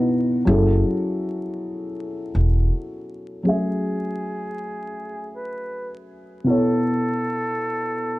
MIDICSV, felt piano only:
0, 0, Header, 1, 2, 480
1, 0, Start_track
1, 0, Key_signature, 3, "minor"
1, 0, Tempo, 750000
1, 298, Time_signature, 4, 2, 24, 8
1, 5243, End_track
2, 0, Start_track
2, 0, Title_t, "Felt piano"
2, 0, Program_c, 0, 0
2, 0, Control_c, 0, 64, 127
2, 0, Note_on_c, 0, 47, 66
2, 0, Note_on_c, 0, 59, 58
2, 0, Note_on_c, 0, 63, 59
2, 0, Note_on_c, 0, 64, 57
2, 0, Note_on_c, 0, 66, 57
2, 0, Note_on_c, 0, 71, 66
2, 288, Note_on_c, 0, 54, 83
2, 294, Note_off_c, 0, 64, 0
2, 295, Note_off_c, 0, 47, 0
2, 295, Note_on_c, 0, 61, 69
2, 297, Note_off_c, 0, 59, 0
2, 298, Note_off_c, 0, 63, 0
2, 301, Note_off_c, 0, 66, 0
2, 304, Note_off_c, 0, 71, 0
2, 304, Note_on_c, 0, 64, 77
2, 305, Control_c, 0, 64, 0
2, 313, Note_on_c, 0, 68, 72
2, 321, Note_on_c, 0, 69, 86
2, 406, Control_c, 0, 64, 127
2, 2186, Note_off_c, 0, 54, 0
2, 2191, Note_off_c, 0, 61, 0
2, 2195, Note_off_c, 0, 64, 0
2, 2196, Note_on_c, 0, 54, 58
2, 2200, Note_off_c, 0, 68, 0
2, 2203, Note_on_c, 0, 61, 53
2, 2204, Note_off_c, 0, 69, 0
2, 2214, Note_on_c, 0, 68, 55
2, 2221, Note_on_c, 0, 57, 52
2, 2227, Control_c, 0, 64, 0
2, 2230, Note_on_c, 0, 76, 63
2, 2342, Control_c, 0, 64, 127
2, 4101, Note_off_c, 0, 54, 0
2, 4105, Note_off_c, 0, 61, 0
2, 4110, Note_off_c, 0, 68, 0
2, 4113, Note_off_c, 0, 57, 0
2, 4118, Note_off_c, 0, 76, 0
2, 4123, Note_on_c, 0, 47, 63
2, 4134, Note_on_c, 0, 59, 54
2, 4140, Note_on_c, 0, 64, 49
2, 4146, Control_c, 0, 64, 0
2, 4151, Note_on_c, 0, 69, 60
2, 4159, Note_on_c, 0, 73, 75
2, 4277, Control_c, 0, 64, 127
2, 5243, Note_off_c, 0, 47, 0
2, 5243, Note_off_c, 0, 59, 0
2, 5243, Note_off_c, 0, 64, 0
2, 5243, Note_off_c, 0, 69, 0
2, 5243, Note_off_c, 0, 73, 0
2, 5243, End_track
0, 0, End_of_file